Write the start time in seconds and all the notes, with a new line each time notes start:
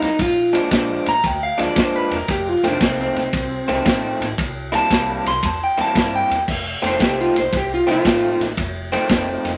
0.01 E2 D#4, snare, ride
0.19 A#1 F4, kick, snare, ride
0.53 A#2 F3 G#3 D4, snare, ride
0.70 A#1 A#2 F3 G#3 D4, kick, snare, ride
1.06 A#1 A#5, snare, ride
1.24 D2 G5, kick, snare, ride
1.43 F5
1.58 D2 A#2 F3 G#3 D4 D5, snare, ride
1.75 F2 A#2 F3 G#3 D4 C5, kick, snare, ride
1.96 B4
2.11 E1 A#4, snare, ride
2.28 F1 G4, kick, snare, ride
2.49 F4
2.63 F1 F2 D#3 A3 C4 D4, snare, ride
2.80 C2 F2 D#3 A3 C4, kick, snare, ride
3.01 C4
3.16 C2, snare, ride
3.33 C2, kick, snare, ride
3.68 C2 F2 D#3 A3 C4, snare, ride
3.84 A1 F2 D#3 A3 C4, kick, snare, ride
4.20 A1, snare, ride
4.38 C2, kick, snare, ride
4.72 C3 G3 A#3 E4 A5, snare, ride
4.90 C2 C3 G3 A#3 E4, kick, snare, ride
5.25 C2 C6, snare, ride
5.43 E2 A5, kick, snare, ride
5.64 G5
5.77 E2 C3 G3 A#3 E4, snare, ride
5.81 A5
5.95 G2 C3 G3 A#3 E4, kick, snare, ride
6.16 G5
6.30 E2, snare, ride
6.48 F1, kick, snare, crash
6.82 F1 F2 D#3 A3 C4, snare, ride
6.87 C5
6.99 C2 F2 D#3 A3 C4, kick, snare, ride
7.03 G4
7.21 F4
7.36 C2 C5, snare, ride
7.53 C2, kick, snare, ride
7.57 G4
7.74 F4
7.87 C2 F2 D#3 A3 C4 F4, snare, ride
8.04 A1 F2 D#3 A3 C4, kick, snare, ride
8.40 A1, snare, ride
8.57 F1, kick, snare, ride
8.92 F2 D#3 A3 C4, snare, ride
9.09 F1 F2 D#3 A3 C4, kick, snare, ride
9.45 F1, snare, ride